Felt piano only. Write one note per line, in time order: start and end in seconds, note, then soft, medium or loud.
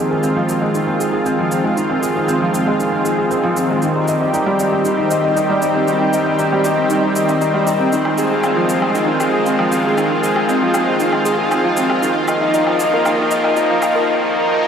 0.00 0.23 C4 medium
0.00 0.11 G#4 medium
0.11 0.18 G#4 medium
0.23 0.36 C4 medium
0.36 0.49 F3 medium
0.49 0.61 C4 medium
0.61 0.74 G#3 medium
0.74 0.82 D#3 medium
0.87 0.99 C4 medium
1.00 1.12 G#4 medium
1.13 1.21 G#4 medium
1.26 1.38 C4 medium
1.39 1.51 F3 medium
1.52 1.64 C4 medium
1.64 1.77 G#3 medium
1.77 1.84 D#3 medium
1.90 2.02 C4 medium
2.03 2.14 G#4 medium
2.16 2.23 G#4 medium
2.28 2.41 C4 medium
2.41 2.53 F3 medium
2.54 2.66 C4 medium
2.66 2.79 G#3 medium
2.79 2.87 D#3 medium
2.92 3.05 C4 medium
3.05 3.17 G#4 medium
3.18 3.26 G#4 medium
3.31 3.43 C4 medium
3.43 3.56 F3 medium
3.57 3.69 C4 medium
3.70 3.82 G#3 medium
3.83 3.90 D#3 medium
3.95 4.08 D#4 medium
4.08 4.20 D#5 medium
4.21 4.28 D#5 medium
4.34 4.46 D#4 medium
4.46 4.59 G3 medium
4.60 4.72 D#4 medium
4.72 4.84 C4 medium
4.85 4.93 D#3 medium
4.98 5.10 D#4 medium
5.11 5.22 D#5 medium
5.24 5.31 D#5 medium
5.36 5.49 D#4 medium
5.50 5.62 G3 medium
5.62 5.74 D#4 medium
5.75 5.87 C4 medium
5.88 5.95 D#3 medium
6.01 6.13 D#4 medium
6.14 6.25 D#5 medium
6.26 6.33 D#5 medium
6.39 6.51 D#4 medium
6.52 6.64 G3 medium
6.65 6.77 D#4 medium
6.77 6.89 C4 medium
6.90 6.98 D#3 medium
7.03 7.15 D#4 medium
7.16 7.27 D#5 medium
7.28 7.36 D#5 medium
7.41 7.54 D#4 medium
7.54 7.66 G3 medium
7.67 7.79 D#4 medium
7.79 7.92 C4 medium
7.92 8.00 D#3 medium
8.05 8.18 D#3 medium
8.18 8.30 G#4 medium
8.31 8.38 G#4 medium
8.44 8.56 C4 medium
8.57 8.69 F3 medium
8.70 8.82 C4 medium
8.82 8.95 G#3 medium
8.95 9.02 D#3 medium
9.08 9.20 D#3 medium
9.21 9.32 G#4 medium
9.33 9.41 G#4 medium
9.46 9.59 C4 medium
9.59 9.71 F3 medium
9.72 9.84 C4 medium
9.85 9.97 G#3 medium
9.97 10.05 D#3 medium
10.10 10.23 D#3 medium
10.23 10.34 G#4 medium
10.36 10.43 G#4 medium
10.48 10.61 C4 medium
10.61 10.74 F3 medium
10.74 10.87 C4 medium
10.87 11.00 G#3 medium
11.00 11.07 D#3 medium
11.12 11.25 D#3 medium
11.25 11.37 G#4 medium
11.38 11.46 G#4 medium
11.52 11.64 C4 medium
11.64 11.77 F3 medium
11.77 11.89 C4 medium
11.89 12.02 G#3 medium
12.02 12.10 D#3 medium
12.15 12.28 D#3 medium
12.28 12.40 D#5 medium
12.42 12.49 D#5 medium
12.54 12.66 D#4 medium
12.67 12.79 F3 medium
12.80 12.92 D#4 medium
12.93 13.05 A#3 medium
13.06 13.13 D#3 medium
13.19 13.31 D#3 medium
13.31 13.42 D#5 medium
13.44 13.51 D#5 medium
13.57 13.69 D#4 medium
13.70 13.82 F3 loud
13.82 13.94 D#4 medium
13.95 14.07 A#3 medium